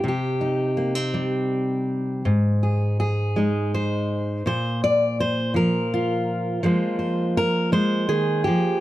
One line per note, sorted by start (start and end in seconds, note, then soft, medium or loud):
0.04 2.26 C3 medium
0.08 2.29 G4 medium
0.41 2.22 D#4 soft
0.77 0.95 A#3 soft
0.95 2.26 C4 soft
1.14 2.22 G3 medium
2.25 4.42 G#2 medium
2.63 2.99 G#4 soft
3.00 3.74 G#4 medium
3.36 4.42 G#3 medium
3.36 4.43 D#4 soft
3.74 4.46 C5 medium
4.46 6.59 A#2 medium
4.46 4.83 C5 medium
4.84 5.19 D5 loud
5.20 5.55 C5 loud
5.54 6.62 F3 medium
5.54 6.64 A#4 medium
5.94 6.64 F4 medium
6.63 8.09 F3 medium
6.63 7.71 G#3 medium
6.63 8.80 A#3 medium
6.63 8.08 F4 soft
6.63 6.98 C5 soft
6.99 7.36 C5 medium
7.37 7.72 A#4 loud
7.72 8.47 G#3 medium
7.72 8.44 C5 loud
8.09 8.47 D#3 medium
8.09 8.80 G#4 medium
8.44 8.80 F3 medium
8.44 8.80 G4 medium